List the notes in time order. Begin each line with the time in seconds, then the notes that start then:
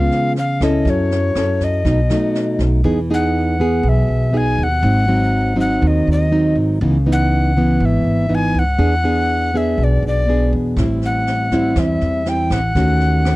Already playing: C#3 G#3 B3 F4 F5
0.11 snare
0.36 F5, snare
0.60 C#2 C#4 E4 A4 D#5, kick, cross-stick, snare
0.85 F#2 F#3, kick, snare
0.90 C#5
1.11 snare
1.35 F#2 C#4 E4 A4, cross-stick, snare
1.60 kick, snare
1.64 D#5
1.85 B1 B2 F#3 A3 D#4, kick, snare
2.10 F#3 A3 D#4, cross-stick, snare
2.35 snare
2.59 B1, kick, snare
2.84 E2 E3 B3 D#4 G#4
3.10 B3 D#4 G#4 F#5
3.60 B3 G#4
3.83 B1 B2
3.89 E5
4.08 B1
4.33 B3 D#4 G#4
4.37 G#5
4.58 D#2
4.63 F#5
4.83 G#1 G#2 F#3 C4 D#4
5.08 F#3 C4 D#4
5.56 F#3 C4 D#4
5.60 F#5
5.82 D#2 D#3
5.87 D#5
6.07 D#2
6.12 D#5
6.31 F#3 C4 D#4
6.56 G#1
6.81 C#2 C#3 E3 B3 D#4
7.06 E3 B3 D#4
7.12 F#5
7.57 E3 B3
7.80 G#1 G#2
7.85 E5
8.04 G#1
8.29 E3 B3 D#4
8.35 G#5
8.54 C#2
8.59 F#5
8.78 E2 E3 B3 D4 G#4
9.04 B3 D4 G#4
9.54 B3 D4 G#4 E5
9.78 B1 B2
9.84 D5
10.03 B1
10.08 D5
10.28 B3 D4 G#4
10.53 E2
10.77 A1 A2 G3 C4 E4, kick, cross-stick, snare
11.02 F#5, snare
11.27 snare
11.51 G3 C4 E4, kick, snare
11.76 E2 E3 E5, kick, cross-stick, snare
12.01 E2, snare
12.25 G3 C4 E4 G5, snare
12.50 A1 F#5, kick, cross-stick, snare
12.75 D#2 D#3 A3 C#4 F#4, kick, snare
13.00 snare
13.25 cross-stick, snare